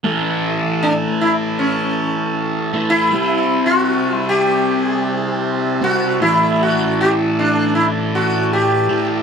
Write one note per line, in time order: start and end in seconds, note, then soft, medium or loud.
0.04 2.72 A2 medium
0.04 2.74 E3 medium
0.04 2.72 A3 medium
0.04 3.09 A4 medium
0.04 9.22 E5 medium
0.04 9.22 A5 medium
0.83 0.93 D4 medium
1.21 1.32 E4 medium
1.59 2.70 C#4 medium
2.73 3.11 A2 medium
2.73 3.12 E3 medium
2.73 3.10 A3 medium
2.90 3.66 E4 medium
3.11 5.79 C3 medium
3.11 5.82 G3 medium
3.11 6.18 G3 medium
3.11 5.80 C4 loud
3.11 6.18 C5 medium
3.66 4.16 F#4 medium
4.16 4.29 E4 medium
4.29 4.85 G4 loud
4.85 5.00 G#4 loud
5.00 5.17 G4 loud
5.17 5.32 G#4 loud
5.32 5.83 G4 loud
5.82 6.19 C3 medium
5.82 6.21 G3 medium
5.82 6.18 C4 medium
5.82 6.21 F#4 loud
6.20 8.87 A2 medium
6.20 8.90 E3 medium
6.20 8.88 A3 medium
6.20 6.61 E4 medium
6.20 9.22 A4 medium
6.20 9.22 D5 medium
6.63 7.00 F#4 medium
7.01 7.11 G4 loud
7.39 7.75 D4 medium
7.75 7.85 E4 medium
8.15 8.53 F#4 medium
8.53 9.06 G4 medium
8.89 9.22 A2 medium
8.89 9.22 E3 medium
8.89 9.22 A3 medium